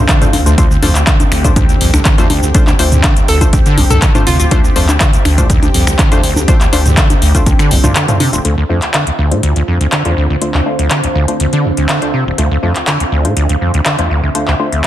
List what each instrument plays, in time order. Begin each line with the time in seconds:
Already playing: analog synth pad D3 C4 F4
0.09 acid bass D3, kick, clap, closed hi-hat, shaker
0.21 acid bass D2, synth stab A3 D4 F4 C5, closed hi-hat, mid tom, shaker
0.33 analog synth bass D2, acid bass D2, open hi-hat, high conga
0.46 acid bass D2, synth stab A3 D4 F4 C5, closed hi-hat, shaker
0.58 synth stab A3 D4 F4 C5, analog synth pad G4, kick, closed hi-hat, shaker
0.71 acid bass D2, shaker
0.82 analog synth bass D2, acid bass F2, synth stab A3 D4 F4 C5, open hi-hat, high conga
0.95 clap, closed hi-hat, shaker
1.07 acid bass D3, kick, clap, closed hi-hat, shaker
1.20 acid bass D2, closed hi-hat, high conga, shaker
1.32 acid bass D2, analog synth bass D2, finger snap, open hi-hat
1.44 acid bass A2, synth stab A3 D4 F4 C5, kick, closed hi-hat, shaker
1.56 acid bass D2, kick, closed hi-hat, mid tom, high conga, shaker
1.69 acid bass D2, closed hi-hat, shaker
1.81 analog synth bass C2, acid bass F2, open hi-hat
1.94 acid bass D2, finger snap, closed hi-hat, high conga, shaker
2.05 acid bass D3, kick, clap, closed hi-hat, shaker
2.18 acid bass E2, synth stab A3 D4 F4 C5, closed hi-hat, shaker
2.30 analog synth bass D2, acid bass D2, open hi-hat, high conga
2.43 acid bass D2, shaker
2.54 synth stab A3 D4 F4 C5, kick, closed hi-hat, shaker
2.67 acid bass D2, clap, high conga, shaker
2.79 analog synth bass D2, synth stab A3 D4 F4 C5, open hi-hat
2.92 acid bass D2, closed hi-hat, mid tom, shaker
3.04 acid bass D3, kick, clap, closed hi-hat, high conga, shaker
3.17 acid bass D2, closed hi-hat, shaker
3.28 acid bass D2, analog synth bass D2, synth pluck A4, open hi-hat
3.41 synth stab A3 D4 F4 C5, kick, closed hi-hat, high conga, shaker
3.53 acid bass D2, kick, closed hi-hat, shaker
3.66 acid bass D3, closed hi-hat, shaker
3.78 analog synth bass C2, acid bass D2, open hi-hat, high conga
3.90 acid bass D2, synth pluck A4, closed hi-hat, mid tom, shaker
4.02 acid bass D3, kick, clap, closed hi-hat, shaker
4.15 synth stab A3 D4 F4 C5, closed hi-hat, mid tom, high conga, shaker
4.27 analog synth bass D2, acid bass C3, synth pluck F4, open hi-hat
4.39 acid bass D1, synth pluck F4, closed hi-hat, shaker
4.51 acid bass D2, synth stab A3 D4 F4 C5, kick, closed hi-hat, high conga, shaker
4.64 acid bass D2, shaker
4.76 analog synth bass D2, acid bass F2, synth stab A3 D4 F4 C5, open hi-hat
4.89 clap, closed hi-hat, high conga, shaker
5.00 acid bass D3, kick, clap, closed hi-hat, shaker
5.13 acid bass D2, closed hi-hat, shaker
5.25 acid bass D2, analog synth bass D2, finger snap, open hi-hat, high conga
5.38 acid bass A2, synth stab A3 D4 F4 C5, kick, closed hi-hat, shaker
5.50 acid bass D2, kick, closed hi-hat, mid tom, shaker
5.63 acid bass D2, closed hi-hat, high conga, shaker
5.74 analog synth bass C2, acid bass F2, open hi-hat
5.87 acid bass D2, finger snap, closed hi-hat, shaker
5.99 acid bass D3, kick, clap, closed hi-hat, high conga, shaker
6.12 acid bass E2, synth stab A3 D4 F4 C5, closed hi-hat, shaker
6.23 acid bass D2, analog synth bass D2, open hi-hat
6.36 acid bass D2, high conga, shaker
6.48 synth stab A3 D4 F4 C5, kick, closed hi-hat, shaker
6.61 acid bass D2, clap, closed hi-hat, shaker
6.73 analog synth bass D2, synth stab A3 D4 F4 C5, open hi-hat, high conga
6.86 acid bass D2, closed hi-hat, mid tom, shaker
6.97 acid bass D3, kick, clap, closed hi-hat, shaker
7.10 acid bass D2, closed hi-hat, high conga, shaker
7.22 analog synth bass D2, acid bass D2, open hi-hat
7.35 synth stab A3 D4 F4 C5, kick, closed hi-hat, shaker
7.46 acid bass D2, kick, closed hi-hat, high conga, shaker
7.59 acid bass D3, finger snap, closed hi-hat, shaker
7.71 analog synth bass C2, acid bass D2, open hi-hat
7.84 acid bass D2, synth stab A3 D4 F4 C5, closed hi-hat, mid tom, high conga, shaker
7.96 acid bass D3, clap, closed hi-hat, shaker
8.08 synth stab A3 D4 F4 C5, closed hi-hat, mid tom, shaker
8.20 acid bass C3, open hi-hat, high conga
8.33 acid bass D1, synth stab A3 D4 F4 C5, closed hi-hat, shaker
8.45 acid bass D2, analog synth pad D3 C4 F4, synth stab A3 D4 F4 C5, ambient pad D4, closed hi-hat
8.58 acid bass D2
8.69 acid bass F2, synth stab A3 D4 F4 C5
8.82 clap, closed hi-hat
8.88 ambient pad C5
8.94 acid bass D3, clap, closed hi-hat
9.07 acid bass D2, closed hi-hat
9.19 acid bass D2
9.31 acid bass A2, synth stab A3 D4 F4 C5, closed hi-hat
9.43 acid bass D2, ambient pad F5, closed hi-hat
9.56 acid bass D2, closed hi-hat
9.68 acid bass F2
9.81 acid bass D2, closed hi-hat
9.92 acid bass D3, clap, closed hi-hat
10.05 acid bass E2, synth stab A3 D4 F4 C5, closed hi-hat
10.17 acid bass D2
10.30 acid bass D2
10.41 synth stab A3 D4 F4 C5, closed hi-hat
10.54 acid bass D2, clap
10.66 synth stab A3 D4 F4 C5
10.79 acid bass D2, closed hi-hat
10.91 acid bass D3, clap, closed hi-hat
11.04 acid bass D2, closed hi-hat
11.15 acid bass D2
11.28 synth stab A3 D4 F4 C5, closed hi-hat
11.40 acid bass D2, closed hi-hat
11.53 acid bass D3, closed hi-hat
11.65 acid bass D2
11.77 acid bass D2, closed hi-hat
11.89 acid bass D3, clap, closed hi-hat
12.02 synth stab A3 D4 F4 C5, closed hi-hat
12.14 acid bass C3
12.26 acid bass D1
12.38 acid bass D2, synth stab A3 D4 F4 C5, closed hi-hat
12.51 acid bass D2
12.63 acid bass F2, synth stab A3 D4 F4 C5
12.76 clap, closed hi-hat
12.87 acid bass D3, clap, closed hi-hat
13.00 acid bass D2, closed hi-hat
13.12 acid bass D2
13.25 acid bass A2, synth stab A3 D4 F4 C5, closed hi-hat
13.35 acid bass D2, ambient pad E5, closed hi-hat
13.49 acid bass D2, closed hi-hat
13.61 acid bass F2
13.74 acid bass D2, closed hi-hat
13.86 acid bass D3, clap, closed hi-hat
13.99 acid bass E2, synth stab A3 D4 F4 C5, closed hi-hat
14.10 acid bass D2
14.23 acid bass D2
14.35 synth stab A3 D4 F4 C5, closed hi-hat
14.48 acid bass D2, clap
14.59 synth stab A3 D4 F4 C5
14.72 acid bass D2, closed hi-hat